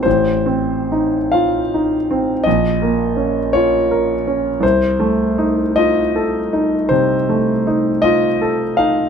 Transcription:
\new Staff \with { instrumentName = "Grand piano" } { \time 12/8 \key f \phrygian \tempo 4. = 53 << { c''4. f''4. ees''4. des''4. | c''4. ees''4. c''4. ees''4 f''8 | } \\ { a,,8 c'8 ees'8 f'8 ees'8 c'8 bes,,8 bes8 des'8 f'8 bes'8 des'8 | c,8 a8 ees'8 f'8 a'8 ees'8 c8 a8 ees'8 f'8 a'8 ees'8 | } >> }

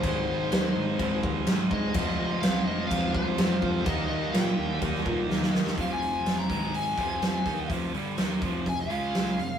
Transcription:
<<
  \new Staff \with { instrumentName = "Lead electric guitar" } { \time 4/4 \key ees \mixolydian \tempo 4 = 125 c''2~ c''8 r4 ees''8~ | ees''4 f''8 ees''8 f''8 c''4. | ees''8 ees''8 g''4 r2 | \key f \minor f''16 aes''4 bes''8. aes''2 |
r2 aes''16 f''4.~ f''16 | }
  \new Staff \with { instrumentName = "Distorted electric guitar" } { \clef bass \time 4/4 \key ees \mixolydian <aes, ees aes c' ees'>1 | <f aes c' f'>1 | <ees g bes ees'>1 | \key f \minor r1 |
r1 | }
  \new Staff \with { instrumentName = "Distorted electric guitar" } { \clef bass \time 4/4 \key ees \mixolydian <aes, ees aes>2 <aes, ees aes>2 | <f, c f>2 <f, c f>2 | <ees bes ees'>2 <ees bes ees'>2 | \key f \minor <f, c f>4. <aes, ees aes>4 <f, c f>4 <ees bes ees'>8 |
<f, c f>8 <g, d g>8 <ees bes ees'>8 <f, c f>8 <f, c>8 <des aes des'>4 <f, c>8 | }
  \new Staff \with { instrumentName = "Overdriven electric guitar" } { \clef bass \time 4/4 \key ees \mixolydian <aes, ees aes>2.~ <aes, ees aes>8 <aes, ees aes>8 | <f, c f>2.~ <f, c f>8 <f, c f>8 | <ees bes ees'>2.~ <ees bes ees'>8 <ees bes ees'>8 | \key f \minor <f, c f>4. <aes, ees aes>4 <f, c f>4 <ees bes ees'>8 |
<f, c f>8 <g, d g>8 <ees bes ees'>8 <f, c f>8 <f, c>8 <des aes des'>4 <f, c>8 | }
  \new Staff \with { instrumentName = "Picked electric bass" } { \clef bass \time 4/4 \key ees \mixolydian aes,,8 aes,,8 ees,8 aes,,8 aes,,8 ees,8 aes,,8 aes,8 | f,,8 f,,8 c,8 f,,8 f,,8 c,8 f,,8 f,8 | ees,8 ees,8 bes,8 ees,8 ees,8 bes,8 ees,8 ees8 | \key f \minor f,,4. aes,,4 f,,4 ees,8 |
f,,8 g,,8 ees,8 f,,8 f,,8 des,4 f,,8 | }
  \new DrumStaff \with { instrumentName = "Drums" } \drummode { \time 4/4 <cymc bd>4 <cymc sn>4 <cymc bd>8 bd8 <cymc sn>8 bd8 | <cymc bd>4 <cymc sn>4 <cymc bd>8 bd8 <cymc sn>8 bd8 | <cymc bd>4 <cymc sn>4 <cymc bd>16 sn16 bd8 sn16 sn16 sn16 sn16 | <hho bd>8 hho8 <hho sn>8 <hho bd>8 hho8 <hho bd>8 <hho sn>8 <hho bd>8 |
<hho bd>8 hho8 <hho sn>8 <hho bd>8 <hho bd>8 hho8 <hho sn>8 hho8 | }
>>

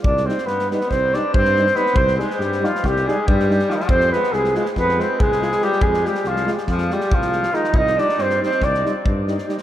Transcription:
<<
  \new Staff \with { instrumentName = "Flugelhorn" } { \time 9/8 \tempo 4. = 94 d''8 c''8 b'8 b'8 c''8 d''8 c''4 b'8 | c''8 aes'8 g'8 f'8 g'8 aes'8 g'4 f'32 ees'32 f'16 | c''8 b'8 aes'8 aes'8 b'8 c''8 aes'4 g'8 | aes'8 g'8 f'8 r8 f'8 g'8 f'4 ees'8 |
ees''8 d''8 c''8 c''8 d''8 r2 | }
  \new Staff \with { instrumentName = "Euphonium" } { \time 9/8 r8 ees'8 r8 ees'8 r8 ees'8 r8 ees'8 ees'8 | r8 ees'8 r8 ees'8 r8 ees'8 r8 ees'8 ees'8 | r8 f'8 r8 f'8 r8 f'8 r8 f'8 f'8 | r8 f'8 r8 f'8 r8 f'8 r8 f'8 f'8 |
r8 ees'8 r8 ees'8 r8 ees'8 r8 ees'8 ees'8 | }
  \new Staff \with { instrumentName = "Alto saxophone" } { \clef bass \time 9/8 d'8 c'8 b8 b8 c'8 d'8 c'4 b8 | c'8 aes8 g8 f8 g8 aes8 g4 f32 ees32 f16 | c'8 b8 aes8 aes8 b8 c'8 aes4 g8 | aes8 g8 f8 r8 f8 g8 f4 ees8 |
ees'8 d'8 c'8 c'8 d'8 r2 | }
  \new Staff \with { instrumentName = "Euphonium" } { \clef bass \time 9/8 r8 g8 r8 g8 r8 g8 r8 g8 g8 | r8 g8 r8 g8 r8 g8 r8 g8 g8 | r8 aes8 r8 aes8 r8 aes8 r8 aes8 aes8 | r8 aes8 r8 aes8 r8 aes8 r8 aes8 aes8 |
r8 g8 r8 g8 r8 g8 r8 g8 g8 | }
  \new Staff \with { instrumentName = "Tuba" } { \clef bass \time 9/8 c,4 g,4 c,4 g,4. | c,4 g,4 c,4 g,4. | f,4 c,4 f,4 c,4. | f,4 c,4 f,4 c,4. |
c,4 g,4 c,4 g,4. | }
  \new DrumStaff \with { instrumentName = "Drums" } \drummode { \time 9/8 bd16 sn16 sn16 sn16 sn16 sn16 sn16 sn16 <bd sn>8 sn8 bd16 sn16 sn16 sn16 sn16 sn16 | bd16 sn16 sn16 sn16 sn16 sn16 sn16 sn16 <bd sn>16 sn16 sn8 bd16 sn16 sn16 sn16 sn16 sn16 | bd16 sn16 sn16 sn16 sn16 sn16 sn16 sn16 <bd sn>16 sn16 sn8 bd16 sn16 sn16 sn16 sn16 sn16 | bd16 sn16 sn16 sn16 sn16 sn16 sn16 sn16 <bd sn>16 sn16 sn16 sn16 bd16 sn16 sn16 sn16 sn16 sn16 |
bd16 sn16 sn16 sn16 sn16 sn16 sn16 sn16 <bd sn>16 sn16 sn8 bd8 sn16 sn16 sn16 sn16 | }
>>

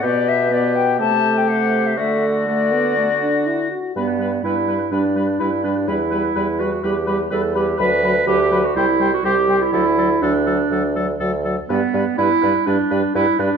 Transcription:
<<
  \new Staff \with { instrumentName = "Flute" } { \time 4/4 \key g \major \tempo 4 = 124 d''8 e''8 d''8 g''8 a''8. g''16 fis''8. e''16 | e''4 d''2 r4 | b''8 b''8 b''8 b''8 b''8 b''8 b''8 b''8 | b''8 b''8 b''8 b''8 b''8 b''8 b''8 b''8 |
b''8 b''8 b''8 b''8 g''8 g''8 g''8 g''8 | d''8 d''8 d''8 d''8 d''8 d''8 d''8 d''8 | d''8 d''8 d''8 d''8 d''8 d''8 d''8 d''8 | }
  \new Staff \with { instrumentName = "Oboe" } { \time 4/4 \key g \major g'4 g'4 g'2 | fis'4 fis'2~ fis'8 r8 | b'8 b'8 b'8 b'8 b'8 b'8 b'8 b'8 | b'8 b'8 b'8 b'8 b'8 b'8 b'8 b'8 |
b'8 b'8 b'8 b'8 c''8 c''8 c''8 c''8 | a'8 a'8 a'8 a'8 a'8 a'8 a'8 a'8 | b'8 b'8 b'8 b'8 b'8 b'8 b'8 b'8 | }
  \new Staff \with { instrumentName = "Clarinet" } { \time 4/4 \key g \major b'2 a'4 c''4 | a'2.~ a'8 r8 | b4 e'4 d'4 e'8 d'8 | e'4. fis'8 g'8 g'8 a'8 g'8 |
b'4 g'8. fis'16 e'8. fis'16 g'8. e'16 | e'4 d'2 r4 | b4 e'4 d'4 e'8 d'8 | }
  \new Staff \with { instrumentName = "French horn" } { \clef bass \time 4/4 \key g \major b4 b4 a2 | a4 a8 b8 a8 d'8 e'8 fis'8 | g8 g8 g8 g8 g8 g8 g8 g8 | g8 g8 g8 g8 g8 g8 g8 g8 |
fis8 fis8 fis8 fis8 g8 g8 g8 g8 | fis8 fis8 fis8 fis8 fis8 fis8 fis8 fis8 | g8 g8 g8 g8 g8 g8 g8 g8 | }
  \new Staff \with { instrumentName = "Bassoon" } { \clef bass \time 4/4 \key g \major b,2 c2 | d2.~ d8 r8 | g,4 g,4 g,4 g,4 | e,4 e,4 e,4 e,4 |
d,4 d,4 c,4 c,4 | d,4 d,4 d,4 d,4 | g,8 g,8 g,8 g,8 g,8 g,8 g,8 g,8 | }
>>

